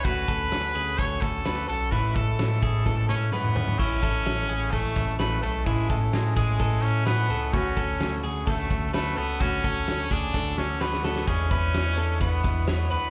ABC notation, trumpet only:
X:1
M:4/4
L:1/8
Q:1/4=128
K:A
V:1 name="Trumpet"
B4 c A2 A | B A4 C B,2 | C4 A,2 A, A, | G,2 G, G,2 C B,2 |
C3 z A,2 A, B, | C3 D2 C B,2 | C4 B,2 B,2 |]